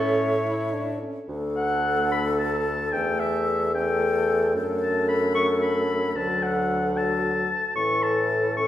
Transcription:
0.00 0.97 A2 medium
0.00 0.39 C#4 medium
0.00 0.42 A4 loud
0.00 0.84 C#5 loud
0.00 0.98 E5 medium
0.45 0.75 E4 loud
0.73 1.01 D4 medium
1.02 1.14 C#4 medium
1.28 2.95 D2 medium
1.28 2.89 A3 medium
1.28 2.89 D4 medium
1.28 2.89 A4 medium
1.56 2.07 F#5 loud
2.12 2.24 B5 loud
2.39 2.94 A5 loud
2.92 4.56 E2 medium
2.92 3.73 A3 medium
2.92 3.72 C#4 medium
2.92 3.72 A4 medium
2.92 3.21 G5 loud
3.19 3.74 E5 loud
3.74 4.53 A3 medium
3.74 4.53 C#4 medium
3.74 4.54 A4 medium
3.74 4.53 G5 loud
4.54 6.14 F#2 medium
4.54 6.13 A3 medium
4.54 6.13 D4 medium
4.54 6.13 A4 medium
4.82 5.07 A5 loud
5.08 5.34 B5 loud
5.35 5.47 C#6 loud
5.62 6.17 B5 medium
6.15 7.46 D2 medium
6.15 6.94 F#3 medium
6.15 6.94 D4 medium
6.15 6.95 A4 medium
6.15 6.44 A5 loud
6.43 6.99 F#5 loud
6.95 7.48 F#3 medium
6.95 7.48 D4 medium
6.95 7.48 A4 medium
6.95 7.75 A5 loud
7.76 8.68 A2 medium
7.76 8.54 E3 medium
7.76 8.53 C#4 medium
7.76 8.53 A4 medium
7.76 8.04 C#6 loud
8.03 8.56 A5 loud
8.57 8.68 E3 medium
8.57 8.68 C#4 medium
8.57 8.68 A4 medium
8.57 8.68 C#6 loud

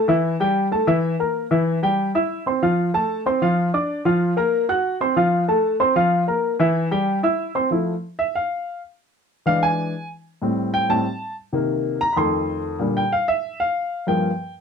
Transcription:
0.08 0.34 E3 medium
0.08 0.34 E4 medium
0.08 0.35 E5 medium
0.40 0.66 G3 medium
0.40 0.66 G4 medium
0.40 0.66 G5 medium
0.72 0.85 A3 medium
0.72 0.85 A4 medium
0.72 0.85 A5 medium
0.87 1.14 E3 medium
0.87 1.14 E4 medium
0.87 1.14 E5 medium
1.19 1.45 A#3 medium
1.19 1.46 A#4 medium
1.19 1.46 A#5 medium
1.51 1.77 E3 medium
1.51 1.77 E4 medium
1.51 1.77 E5 medium
1.83 2.09 G3 medium
1.83 2.09 G4 medium
1.83 2.09 G5 medium
2.15 2.41 E4 medium
2.15 2.41 E5 medium
2.15 2.41 E6 medium
2.46 2.59 C4 medium
2.46 2.60 C5 medium
2.46 2.60 C6 medium
2.62 2.88 F3 medium
2.62 2.89 F4 medium
2.62 2.89 F5 medium
2.94 3.20 A3 medium
2.94 3.20 A4 medium
2.94 3.20 A5 medium
3.26 3.39 C4 medium
3.26 3.39 C5 medium
3.26 3.39 C6 medium
3.42 3.68 F3 medium
3.42 3.68 F4 medium
3.42 3.68 F5 medium
3.74 4.00 D4 medium
3.74 4.00 D5 medium
3.74 4.00 D6 medium
4.05 4.31 F3 medium
4.05 4.32 F4 medium
4.05 4.32 F5 medium
4.37 4.63 A#3 medium
4.37 4.63 A#4 medium
4.37 4.64 A#5 medium
4.69 4.95 F#4 medium
4.69 4.95 F#5 medium
4.69 4.95 F#6 medium
5.01 5.14 C4 medium
5.01 5.14 C5 medium
5.01 5.14 C6 medium
5.16 5.43 F3 medium
5.16 5.43 F4 medium
5.16 5.43 F5 medium
5.48 5.74 A3 medium
5.48 5.75 A4 medium
5.48 5.75 A5 medium
5.80 5.93 C4 medium
5.80 5.93 C5 medium
5.80 5.94 C6 medium
5.96 6.22 F3 medium
5.96 6.22 F4 medium
5.96 6.22 F5 medium
6.28 6.54 A#3 medium
6.28 6.54 A#4 medium
6.28 6.54 A#5 medium
6.60 6.86 E3 medium
6.60 6.86 E4 medium
6.60 6.86 E5 medium
6.91 7.18 G3 medium
6.91 7.18 G4 medium
6.91 7.18 G5 medium
7.23 7.49 E4 medium
7.23 7.50 E5 medium
7.23 7.50 E6 medium
7.55 7.68 C4 medium
7.55 7.68 C5 medium
7.55 7.69 C6 medium
7.71 7.92 F3 soft
7.71 7.92 A3 soft
7.71 7.93 E4 medium
8.19 8.34 E5 medium
8.35 8.80 F5 medium
9.46 9.92 E3 medium
9.46 9.92 G#3 medium
9.46 9.92 D4 medium
9.46 9.62 F5 medium
9.63 10.07 G#5 medium
10.42 10.88 A2 medium
10.42 10.88 G3 soft
10.42 10.88 C4 medium
10.74 10.89 G5 medium
10.89 11.04 A2 soft
10.89 11.04 G3 soft
10.89 11.04 C4 medium
10.89 11.34 A5 medium
11.53 11.98 C3 medium
11.53 11.99 D#3 soft
11.53 11.99 A#3 medium
12.01 12.16 A#5 loud
12.13 12.77 F2 medium
12.13 12.15 B5 medium
12.17 12.77 D#3 medium
12.17 12.78 A3 medium
12.17 12.62 C6 medium
12.79 13.01 A#2 medium
12.79 13.01 D3 soft
12.79 13.02 G3 medium
12.97 13.12 G5 medium
13.12 13.28 F5 medium
13.28 13.58 E5 medium
13.60 14.04 F5 medium
14.07 14.29 G2 medium
14.07 14.29 F3 medium
14.07 14.29 A#3 medium
14.07 14.52 G5 medium

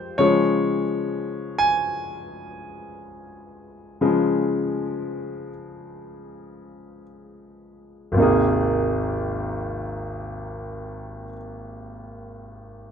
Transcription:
0.00 0.15 F2 medium
0.00 0.16 F3 medium
0.00 0.16 G#3 medium
0.00 0.17 F4 medium
0.00 0.16 G4 medium
0.00 0.15 C5 medium
0.18 0.81 C#3 soft
0.18 0.82 F3 soft
0.18 0.82 G#3 soft
0.18 1.64 C#5 medium
1.58 7.03 G#5 medium
4.01 5.48 C#3 soft
4.01 5.48 F3 soft
4.01 5.48 G#3 soft
8.12 11.24 G#1 soft
8.12 11.26 D#2 soft
8.16 11.29 C3 soft
8.16 11.31 A#3 soft
8.16 11.33 D#4 soft
8.22 11.35 G#4 soft

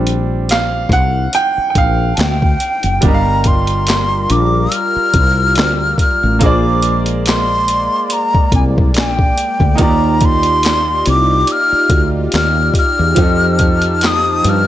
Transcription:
0.00 0.88 A#1 medium
0.00 2.99 G3 medium
0.00 3.00 C4 soft
0.00 3.00 D4 medium
0.07 closed hi-hat medium
0.49 0.89 F5 medium
0.49 snare loud
0.49 clap medium
0.49 closed hi-hat medium
0.89 1.27 C2 loud
0.89 1.36 F#5 loud
0.89 kick medium
0.89 closed hi-hat medium
1.33 1.69 G5 loud
1.33 closed hi-hat medium
1.58 muted fretless electric bass stroke soft
1.70 1.76 G5 medium
1.75 2.12 A#1 medium
1.75 2.57 F5 medium
1.75 kick loud
1.75 closed hi-hat medium
2.14 2.54 D2 loud
2.14 2.22 A5 medium
2.14 closed hi-hat medium
2.20 3.04 G5 loud
2.20 snare loud
2.20 clap medium
2.42 kick medium
2.60 closed hi-hat medium
2.83 3.00 F#1 medium
2.83 closed hi-hat medium
3.01 4.26 G1 loud
3.01 6.36 G3 medium
3.01 6.38 G3 medium
3.01 6.37 D4 medium
3.01 6.38 F4 medium
3.01 6.38 G4 medium
3.01 6.38 A#4 medium
3.01 13.13 D5 medium
3.01 kick loud
3.01 closed hi-hat loud
3.05 6.38 A#4 medium
3.05 3.13 D#5 medium
3.05 3.49 A#5 loud
3.14 6.43 F5 medium
3.44 4.33 C6 loud
3.44 kick medium
3.44 closed hi-hat medium
3.67 closed hi-hat soft
3.87 snare loud
3.87 clap medium
3.87 closed hi-hat medium
4.30 4.66 A#1 loud
4.30 4.75 D6 medium
4.30 closed hi-hat medium
4.72 5.99 F6 loud
4.72 closed hi-hat medium
4.96 muted fretless electric bass stroke medium
5.14 5.57 C2 medium
5.14 kick loud
5.14 closed hi-hat medium
5.55 5.93 D2 loud
5.55 snare loud
5.55 clap medium
5.55 closed hi-hat medium
5.98 6.44 F6 loud
5.98 kick medium
5.98 closed hi-hat medium
6.23 6.39 A1 medium
6.39 7.87 A#1 loud
6.39 9.76 G#3 medium
6.39 9.74 A#3 medium
6.39 9.75 A#3 medium
6.39 9.74 F4 medium
6.39 9.75 A#4 medium
6.39 7.01 D6 loud
6.39 kick loud
6.39 closed hi-hat loud
6.43 9.76 G#4 medium
6.43 9.77 C5 medium
6.43 9.77 D5 medium
6.82 closed hi-hat medium
7.06 closed hi-hat soft
7.26 8.08 C6 loud
7.26 snare loud
7.26 clap medium
7.26 closed hi-hat medium
7.68 closed hi-hat medium
8.08 8.14 C6 medium
8.08 closed hi-hat medium
8.13 8.53 A#5 loud
8.35 muted fretless electric bass stroke medium
8.35 kick medium
8.52 8.95 C2 medium
8.52 8.64 G#5 medium
8.52 kick loud
8.52 closed hi-hat medium
8.78 kick loud
8.94 9.31 A#1 medium
8.94 9.77 G5 medium
8.94 snare loud
8.94 clap medium
8.94 closed hi-hat medium
9.19 kick medium
9.38 closed hi-hat medium
9.60 9.76 D2 medium
9.60 kick loud
9.75 11.02 D#2 loud
9.75 13.12 A#3 medium
9.75 13.11 D#4 medium
9.75 13.13 D#4 medium
9.75 13.13 F4 medium
9.75 14.67 G4 medium
9.75 kick loud
9.75 closed hi-hat loud
9.81 13.14 G4 medium
9.81 13.15 D5 medium
9.81 10.27 A#5 loud
10.21 kick loud
10.21 closed hi-hat medium
10.25 11.08 C6 loud
10.43 closed hi-hat medium
10.63 snare loud
10.63 clap loud
10.63 closed hi-hat medium
11.06 11.43 C2 loud
11.06 11.53 D6 loud
11.06 closed hi-hat medium
11.47 closed hi-hat medium
11.52 12.09 F6 loud
11.72 muted fretless electric bass stroke soft
11.90 12.26 D2 loud
11.90 kick loud
11.90 closed hi-hat medium
12.32 12.69 D#2 medium
12.32 snare loud
12.32 clap medium
12.32 closed hi-hat medium
12.36 12.74 F6 loud
12.74 kick medium
12.74 closed hi-hat medium
12.79 14.08 F6 loud
12.99 13.15 E2 medium
13.15 14.40 F2 loud
13.15 14.67 F3 medium
13.15 14.67 C4 medium
13.15 14.67 D#4 medium
13.15 14.67 G4 medium
13.15 14.67 A5 medium
13.15 kick loud
13.15 closed hi-hat loud
13.20 14.67 A4 medium
13.20 14.67 D#5 medium
13.59 kick loud
13.59 closed hi-hat medium
13.82 closed hi-hat soft
14.01 snare loud
14.01 clap medium
14.01 closed hi-hat medium
14.06 14.51 D#6 loud
14.44 14.67 G2 medium
14.44 closed hi-hat medium
14.49 14.67 F6 loud

